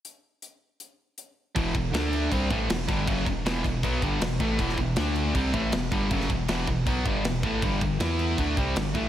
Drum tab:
CC |----------------|x-x-x-x-x-x-x-x-|x-x-x-x-x-x-x-x-|x-x-x-x-x-x-x-x-|
HH |x---x---x---x---|----------------|----------------|----------------|
SD |----------------|----o-------o---|----o-------o---|-o--o-------o---|
BD |----------------|o-o-----o-o---o-|o-o---o-o-o---o-|o-o-----o-o---o-|

CC |x-x-x-x-x-x-x-x-|x-x-x-x-x-x-x-x-|
HH |----------------|----------------|
SD |-o--o-------o---|----o-------o---|
BD |o-o---o-o-o---o-|o-o-----o-o---o-|